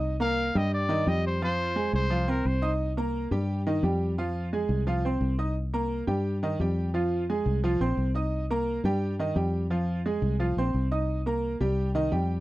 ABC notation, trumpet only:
X:1
M:4/4
L:1/16
Q:1/4=174
K:Cm
V:1 name="Trumpet"
z2 f4 e2 d4 e2 c2 | c6 c4 B2 c3 z | z16 | z16 |
z16 | z16 | z16 | z16 |
z16 |]